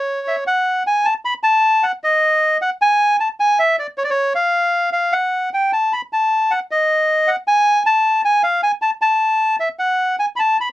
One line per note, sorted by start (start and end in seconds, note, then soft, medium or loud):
0.00 0.44 C#5 medium
0.28 0.36 E5 medium
0.47 0.83 F#5 medium
0.87 1.06 G#5 medium
1.05 1.14 A5 medium
1.25 1.34 B5 medium
1.43 1.84 A5 loud
1.83 1.92 F#5 medium
2.04 2.57 D#5 medium
2.62 2.70 F#5 medium
2.82 3.17 G#5 loud
3.20 3.28 A5 medium
3.40 3.59 G#5 medium
3.59 3.76 E5 medium
3.79 3.87 D5 medium
3.98 4.03 C#5 medium
4.04 4.10 D5 medium
4.10 4.33 C#5 medium
4.35 4.90 F5 medium
4.93 5.14 F5 medium
5.12 5.50 F#5 medium
5.54 5.72 G5 medium
5.73 5.93 A5 medium
5.93 6.02 B5 medium
6.13 6.52 A5 medium
6.51 6.60 F#5 medium
6.71 7.30 D#5 medium
7.27 7.36 F#5 medium
7.48 7.83 G#5 loud
7.86 8.22 A5 medium
8.25 8.42 G#5 medium
8.43 8.61 F5 medium
8.63 8.72 G#5 medium
8.82 8.90 A5 medium
9.02 9.56 A5 medium
9.60 9.69 E5 medium
9.79 10.16 F#5 medium
10.19 10.26 G#5 medium
10.36 10.57 A5 medium
10.36 10.40 B5 medium
10.60 10.69 B5 medium